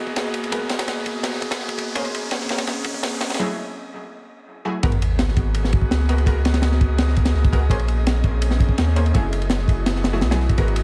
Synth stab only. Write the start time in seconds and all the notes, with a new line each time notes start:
0.52 G#3 B3 F#4 A#4
1.96 A#3 C#4 G#4 C5
3.39 F#3 A3 E4 G#4
4.65 F#3 A3 E4 G#4
4.83 G#3 B3 F#4 A#4
6.09 G#3 B3 F#4 A#4
6.27 G#3 B3 F#4 A#4
7.52 G#3 B3 F#4 A#4
7.70 A#3 C#4 G#4 C5
8.96 A#3 C#4 G#4 C5
9.14 F#3 A3 E4 G#4
10.13 F#3 A3 E4 G#4
10.31 F#3 A3 E4 G#4
10.58 G#3 B3 F#4 A#4